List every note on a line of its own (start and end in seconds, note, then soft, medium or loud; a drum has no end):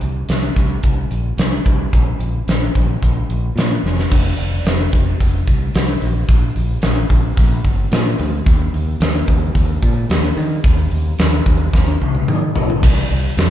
0.01 0.22 C2 medium
0.01 closed hi-hat medium
0.29 0.49 C2 medium
0.29 snare medium
0.29 closed hi-hat medium
0.56 0.77 C2 medium
0.56 kick medium
0.56 snare soft
0.56 closed hi-hat medium
0.83 1.04 C2 medium
0.83 kick medium
0.83 closed hi-hat medium
1.10 1.31 A#1 medium
1.10 closed hi-hat medium
1.37 1.58 C2 medium
1.37 snare loud
1.37 closed hi-hat medium
1.66 1.86 C2 medium
1.66 kick medium
1.66 closed hi-hat medium
1.93 2.13 A#1 medium
1.93 kick medium
1.93 closed hi-hat medium
2.19 2.40 A#1 medium
2.19 closed hi-hat medium
2.47 2.68 A#1 medium
2.47 snare loud
2.47 closed hi-hat medium
2.75 2.95 A#1 medium
2.75 kick medium
2.75 closed hi-hat medium
3.02 3.22 A#1 medium
3.02 kick medium
3.02 closed hi-hat medium
3.29 3.49 A#1 medium
3.29 closed hi-hat medium
3.56 3.76 A#2 medium
3.56 snare loud
3.56 closed hi-hat medium
3.83 4.04 F1 medium
3.83 snare medium
3.99 snare medium
4.11 4.33 F1 medium
4.11 kick loud
4.11 crash loud
4.38 4.59 F1 medium
4.38 open hi-hat medium
4.65 4.86 F1 medium
4.65 snare loud
4.65 open hi-hat medium
4.93 5.14 F1 medium
4.93 kick medium
4.93 open hi-hat medium
5.20 5.42 F1 medium
5.20 kick medium
5.20 open hi-hat medium
5.47 5.69 C2 medium
5.47 kick medium
5.47 open hi-hat medium
5.74 5.96 C2 loud
5.74 snare loud
5.74 open hi-hat medium
6.02 6.23 A#1 medium
6.02 open hi-hat medium
6.29 6.50 A#1 medium
6.29 kick loud
6.29 open hi-hat medium
6.56 6.77 A#1 medium
6.56 open hi-hat medium
6.82 7.04 A#1 medium
6.82 snare loud
6.82 open hi-hat medium
7.10 7.31 A#1 medium
7.10 kick medium
7.10 open hi-hat medium
7.37 7.59 A#1 medium
7.37 kick medium
7.37 open hi-hat medium
7.64 7.86 G1 medium
7.64 kick medium
7.64 open hi-hat medium
7.92 8.13 A#2 loud
7.92 snare loud
7.92 open hi-hat medium
8.19 8.41 D2 medium
8.19 open hi-hat medium
8.46 8.68 D#2 medium
8.46 kick loud
8.46 open hi-hat medium
8.73 8.95 D#2 medium
8.73 open hi-hat medium
9.00 9.22 D#2 medium
9.00 snare loud
9.00 open hi-hat medium
9.28 9.49 D#2 medium
9.28 kick medium
9.28 open hi-hat medium
9.55 9.77 D#2 loud
9.55 kick medium
9.55 open hi-hat medium
9.83 10.04 A#2 medium
9.83 kick medium
9.83 open hi-hat medium
10.09 10.31 D#2 loud
10.09 snare loud
10.09 open hi-hat medium
10.37 10.58 D#3 medium
10.37 open hi-hat medium
10.64 10.86 D#2 medium
10.64 kick loud
10.64 open hi-hat medium
10.91 11.13 D#2 medium
10.91 open hi-hat medium
11.19 11.41 D#2 loud
11.19 snare loud
11.19 open hi-hat medium
11.46 11.68 D#2 medium
11.46 kick medium
11.46 open hi-hat medium
11.73 11.95 D#2 loud
11.73 kick medium
11.73 snare medium
12.01 12.23 C2 medium
12.01 high tom medium
12.15 high tom medium
12.28 12.50 D#3 medium
12.28 mid tom loud
12.56 12.78 B1 medium
12.56 floor tom loud
12.70 floor tom medium
12.83 13.01 C2 medium
12.83 kick loud
12.83 crash loud
12.83 crash medium
13.11 13.29 C2 medium
13.37 13.50 F2 medium
13.37 snare loud
13.37 crash medium